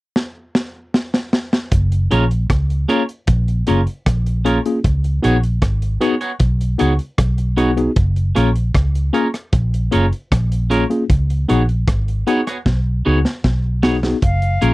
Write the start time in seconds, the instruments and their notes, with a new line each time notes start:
0.16 snare
0.55 snare
0.94 snare
1.14 snare
1.33 snare
1.53 snare
1.72 fingered electric bass F#1, kick, closed hi-hat
1.92 closed hi-hat
2.11 fingered electric bass A#1, tine electric piano A#3 C#4 F4 G#4, clean electric guitar C#4 F4 A#4 C#5, closed hi-hat
2.31 closed hi-hat
2.50 fingered electric bass C#2, kick, cross-stick, closed hi-hat
2.70 closed hi-hat
2.88 tine electric piano A#3 C#4 F4 G#4, clean electric guitar C#4 F4 A#4 C#5, closed hi-hat
3.09 closed hi-hat
3.27 fingered electric bass A#1, kick, closed hi-hat
3.48 closed hi-hat
3.67 fingered electric bass F#1, tine electric piano A#3 C#4 F4 G#4, clean electric guitar C#4 F4 A#4 C#5, closed hi-hat
3.87 closed hi-hat
4.06 fingered electric bass A#1, kick, cross-stick, closed hi-hat
4.26 closed hi-hat
4.45 tine electric piano A#3 C#4 F4 G#4, clean electric guitar C#4 F4 A#4 C#5, closed hi-hat
4.66 tine electric piano A#3 C#4 F4 G#4, closed hi-hat
4.84 fingered electric bass C#2, kick, closed hi-hat
5.04 closed hi-hat
5.23 fingered electric bass A#1, tine electric piano B3 D#4 F#4 G#4, clean electric guitar B3 F#4 G#4 C#5, closed hi-hat
5.43 closed hi-hat
5.62 fingered electric bass G#1, kick, cross-stick, closed hi-hat
5.82 closed hi-hat
6.01 tine electric piano B3 D#4 F#4 G#4, clean electric guitar B3 F#4 G#4 C#5, closed hi-hat
6.21 clean electric guitar B3 F#4 G#4 C#5, closed hi-hat
6.40 fingered electric bass B1, kick, closed hi-hat
6.61 closed hi-hat
6.78 fingered electric bass C#2, tine electric piano B3 D#4 F#4 G#4, clean electric guitar B3 F#4 G#4 C#5, closed hi-hat
6.99 closed hi-hat
7.18 fingered electric bass B1, kick, cross-stick, closed hi-hat
7.38 closed hi-hat
7.57 clean electric guitar B3 F#4 G#4 C#5, tine electric piano B3 D#4 F#4 G#4, closed hi-hat
7.77 tine electric piano B3 D#4 F#4 G#4, muted clean electric guitar stroke, closed hi-hat
7.96 fingered electric bass F#1, kick, closed hi-hat
8.16 closed hi-hat
8.35 fingered electric bass A#1, tine electric piano A#3 C#4 F4 G#4, clean electric guitar C#4 F4 A#4 C#5, cross-stick, closed hi-hat
8.56 closed hi-hat
8.74 fingered electric bass C#2, kick, cross-stick, closed hi-hat
8.95 closed hi-hat
9.13 tine electric piano A#3 C#4 F4 G#4, clean electric guitar C#4 F4 A#4 C#5, closed hi-hat
9.34 cross-stick, closed hi-hat
9.53 fingered electric bass A#1, kick, closed hi-hat
9.74 closed hi-hat
9.91 fingered electric bass F#1, tine electric piano A#3 C#4 F4 G#4, clean electric guitar C#4 F4 A#4 C#5, closed hi-hat
10.12 closed hi-hat
10.32 fingered electric bass A#1, kick, cross-stick, closed hi-hat
10.52 closed hi-hat
10.70 tine electric piano A#3 C#4 F4 G#4, clean electric guitar C#4 F4 A#4 C#5, closed hi-hat
10.90 tine electric piano A#3 C#4 F4 G#4, closed hi-hat
11.10 fingered electric bass C#2, kick, closed hi-hat
11.30 closed hi-hat
11.48 fingered electric bass A#1, tine electric piano B3 D#4 F#4 G#4, clean electric guitar B3 F#4 G#4 C#5, closed hi-hat
11.69 closed hi-hat
11.88 fingered electric bass G#1, kick, cross-stick, closed hi-hat
12.08 closed hi-hat
12.27 tine electric piano B3 D#4 F#4 G#4, clean electric guitar B3 F#4 G#4 C#5, closed hi-hat
12.47 clean electric guitar B3 F#4 G#4 C#5, cross-stick, closed hi-hat
12.66 fingered electric bass B1, kick, snare
13.05 fingered electric bass C#2, clean electric guitar B3 F#4 G#4 C#5, tine electric piano B3 D#4 F#4 G#4
13.25 snare
13.44 fingered electric bass B1, kick, snare
13.83 clean electric guitar B3 F#4 G#4 C#5, tine electric piano B3 D#4 F#4 G#4, snare
14.03 tine electric piano B3 D#4 F#4 G#4, snare
14.22 fingered electric bass F#1, flute F5, kick, closed hi-hat
14.42 closed hi-hat
14.61 fingered electric bass A#1, tine electric piano A#3 C#4 F4 G#4, clean electric guitar C#4 F4 A#4 C#5, closed hi-hat